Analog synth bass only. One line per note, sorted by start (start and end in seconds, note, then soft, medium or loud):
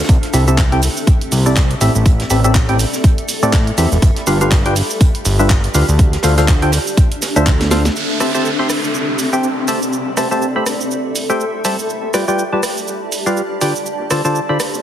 0.09 0.18 C2 loud
0.34 0.88 C2 medium
1.32 1.75 C2 medium
1.81 1.90 A1 medium
1.95 2.24 A1 medium
2.30 2.85 A1 medium
3.43 3.71 A2 medium
3.78 3.87 E2 medium
3.92 3.98 E1 loud
4.02 4.11 G1 loud
4.27 4.82 G1 medium
5.25 5.68 G1 medium
5.74 5.83 D2 medium
5.89 6.17 D2 medium
6.24 6.78 D2 medium
7.36 7.89 D2 medium